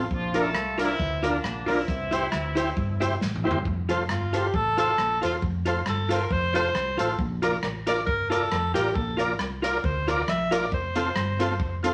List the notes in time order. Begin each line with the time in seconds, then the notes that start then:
0.11 A#1 F3 D4 F4, kick
0.34 A3 D4 F4 A4 A#4 D5, closed hi-hat
0.54 C2, muted hollow-body jazz guitar stroke, cross-stick
0.78 D4 F4 A#4 D5, closed hi-hat
0.82 E3 C4 E4
0.99 D2, kick
1.23 D3 A#3 D4 F4 A#4 D5, closed hi-hat
1.44 A#1, cross-stick
1.66 B1 D4 F4 A#4 D5, open hi-hat
1.71 E3 C4 E4
1.88 C2, kick, hi-hat pedal
2.11 E4 G4 C5, closed hi-hat
2.32 D2, muted hollow-body jazz guitar stroke, cross-stick
2.55 E4 G4 C5, closed hi-hat
2.77 G1, kick
3.00 E4 G4 C5, closed hi-hat
3.21 A1, snare
3.36 mid tom
3.44 E1 E4 G4 C5
3.51 floor tom
3.65 F1, kick
3.89 F4 A4 C5, closed hi-hat
4.09 G1 F4 A4 C5, cross-stick
4.33 F4 G4 A4 C5, closed hi-hat
4.54 A1 A4, kick
4.77 F4 A4 C5, closed hi-hat
4.98 A#1, cross-stick
5.21 E1 F4 A4 C5, closed hi-hat
5.42 F1, kick
5.65 F4 A4 C5, closed hi-hat
5.86 G1 A4 C5, cross-stick
6.09 F4 A4 C5, closed hi-hat
6.13 A#4
6.30 F1 C5, kick
6.54 F4 A4 C5, closed hi-hat
6.75 C2, cross-stick
6.97 A1 F4 A4 C5, closed hi-hat
7.19 A#1, kick
7.42 F4 A#4 D5, closed hi-hat
7.63 A1 A#4 D5, cross-stick
7.86 F4 A#4 D5, closed hi-hat
8.06 G1 A#4, kick
8.30 F4 A4 A#4 D5, closed hi-hat
8.52 F1 A#4 D5, cross-stick
8.74 A1 F4 G4 A#4 D5, closed hi-hat
8.95 A#1 A4, kick
9.17 F4 A#4 D5, closed hi-hat
9.39 C2 A#4 D5, cross-stick
9.62 F4 A#4 D5, closed hi-hat
9.84 D2 C5, kick
10.08 F4 A#4 D5, closed hi-hat
10.28 A#1 E5, cross-stick
10.51 F4 A#4 D5, closed hi-hat
10.72 F1 C5, kick
10.95 C4 F4 A4 C5, closed hi-hat
11.16 G1 A4 C5, cross-stick
11.39 C4 F4 A4 C5, closed hi-hat
11.60 F1, kick
11.83 C4 F4 A4 C5, closed hi-hat